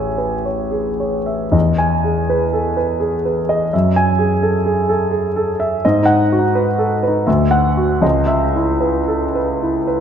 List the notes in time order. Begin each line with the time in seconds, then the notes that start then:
Already playing: A1 G#4 C#5 E5 G#5
0.18 B4
0.45 C#5
0.71 G#4
1.00 C#5
1.26 E5
1.52 E2 D#5
1.78 G#5
2.04 G#4
2.30 B4
2.53 A4
2.77 B4
3.00 G#4
3.25 B4
3.49 D#5
3.73 F#2 E5
3.96 G#5
4.19 G#4
4.43 A4
4.66 G#4
4.89 A4
5.11 G#4
5.36 A4
5.60 E5
5.85 G#2 D#5
6.03 D#4 F#5
6.32 F#4
6.39 D#4
6.55 B4
6.78 A4
7.03 B4
7.08 D#4
7.27 D2 E5
7.51 F#5
7.77 F#4
8.02 C#2 D#5
8.27 E5
8.56 E4
8.80 B4
9.08 A4
9.35 B4
9.63 E4
9.87 B4